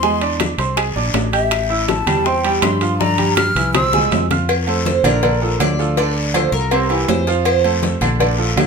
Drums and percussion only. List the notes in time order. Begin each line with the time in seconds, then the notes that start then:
0.03 high bongo, high conga, long guiro
0.21 high conga, high timbale
0.40 high bongo, high conga, high timbale, low timbale, short guiro, claves
0.59 high bongo, high conga, high timbale, short guiro
0.77 high bongo, high timbale, long guiro, claves
0.96 high bongo, high conga
1.14 high bongo, low bongo, high timbale, low timbale, short guiro
1.33 high bongo, high conga, high timbale, short guiro
1.51 high bongo, high conga, high timbale, long guiro, claves
1.70 high conga
1.88 high bongo, high conga, high timbale, low timbale, short guiro
2.07 low conga, high timbale, short guiro, claves
2.26 high bongo, high conga, long guiro
2.44 high conga, high timbale
2.62 high bongo, low bongo, high conga, high timbale, low timbale, short guiro, claves
2.81 high conga, high timbale, short guiro
3.00 high bongo, high conga, long guiro
3.18 high conga, high timbale
3.37 high bongo, high conga, high timbale, low timbale, short guiro, claves
3.56 high bongo, high conga, high timbale, short guiro
3.75 high bongo, low conga, high timbale, long guiro, claves
3.93 high bongo, low conga
4.11 low conga, high timbale, low timbale, short guiro
4.30 low bongo, low conga, high timbale, short guiro
4.49 cowbell, high conga, low agogo, long guiro, claves
4.67 low agogo
4.85 cowbell, high conga, low timbale, short guiro
5.04 cowbell, low conga, low agogo, short guiro, claves
5.23 cowbell, high conga, low conga, low agogo, long guiro
5.60 cowbell, high conga, low timbale, low agogo, short guiro, claves
5.78 high conga, short guiro
5.97 cowbell, low agogo, long guiro
6.34 cowbell, high conga, low timbale, low agogo, short guiro, claves
6.54 short guiro
6.71 cowbell, low agogo, long guiro, claves
6.90 low agogo
7.08 cowbell, low timbale, short guiro
7.27 cowbell, high conga, short guiro
7.45 cowbell, high conga, low agogo, long guiro, claves
7.64 high conga, low agogo
7.82 cowbell, high conga, low timbale, short guiro
8.01 cowbell, low conga, low agogo, short guiro, claves
8.20 cowbell, high conga, low conga, low agogo, long guiro
8.39 high conga
8.57 cowbell, high conga, low timbale, low agogo, short guiro, claves